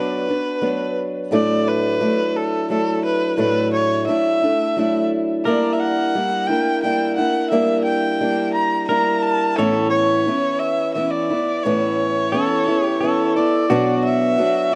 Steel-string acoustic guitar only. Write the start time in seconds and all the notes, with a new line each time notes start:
Already playing: F#3 B3 D4 F#4
0.28 B3 D4 F#4
0.62 F#3 B3 D4 F#4
1.31 A2 F#3 A3 D4 E4
2.00 F#3 A3 D4 E4
2.70 F#3 A3 D4 E4
3.38 A2 F#3 A3 D4 E4
4.07 F#3 A3 D4 E4
4.42 A3 D4 E4
4.77 F#3 A3 D4 E4
5.46 G3 A#3 D4 E4
6.15 G3 A#3 D4 E4
6.49 A#3 D4 E4
6.83 G3 A#3 D4 E4
7.18 A#3 D4 E4
7.52 G3 A#3 D4 E4
8.21 G3 A#3 D4 E4
8.89 G3 A#3 D4 E4
9.58 A2 E3 B3 C#4 E4
10.27 E3 B3 C#4 E4
10.95 E3 B3 C#4 E4
11.30 B3 E4
11.65 A2 E3 B3 C#4 E4
12.33 E3 B3 C#4 E4
12.67 B3 C#4 E4
13.02 E3 B3 C#4 E4
13.36 B3 E4
13.70 B2 F#3 B3 D4 F#4
14.38 F#3 B3 D4 F#4
14.72 F#4